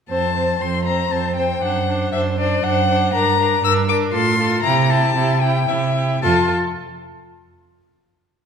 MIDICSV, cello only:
0, 0, Header, 1, 2, 480
1, 0, Start_track
1, 0, Key_signature, -1, "major"
1, 0, Tempo, 505902
1, 96, Time_signature, 3, 2, 24, 8
1, 4894, Tempo, 529568
1, 7883, End_track
2, 0, Start_track
2, 0, Title_t, "Cello"
2, 0, Program_c, 0, 42
2, 92, Note_on_c, 0, 41, 46
2, 524, Note_off_c, 0, 41, 0
2, 575, Note_on_c, 0, 41, 46
2, 1005, Note_off_c, 0, 41, 0
2, 1056, Note_on_c, 0, 41, 43
2, 1483, Note_off_c, 0, 41, 0
2, 1540, Note_on_c, 0, 42, 51
2, 1969, Note_off_c, 0, 42, 0
2, 2021, Note_on_c, 0, 42, 53
2, 2450, Note_off_c, 0, 42, 0
2, 2502, Note_on_c, 0, 42, 60
2, 2927, Note_off_c, 0, 42, 0
2, 2980, Note_on_c, 0, 43, 58
2, 3403, Note_off_c, 0, 43, 0
2, 3454, Note_on_c, 0, 43, 65
2, 3874, Note_off_c, 0, 43, 0
2, 3925, Note_on_c, 0, 45, 61
2, 4351, Note_off_c, 0, 45, 0
2, 4405, Note_on_c, 0, 48, 69
2, 4835, Note_off_c, 0, 48, 0
2, 4886, Note_on_c, 0, 48, 59
2, 5310, Note_off_c, 0, 48, 0
2, 5368, Note_on_c, 0, 48, 50
2, 5804, Note_off_c, 0, 48, 0
2, 5858, Note_on_c, 0, 41, 59
2, 6125, Note_off_c, 0, 41, 0
2, 7883, End_track
0, 0, End_of_file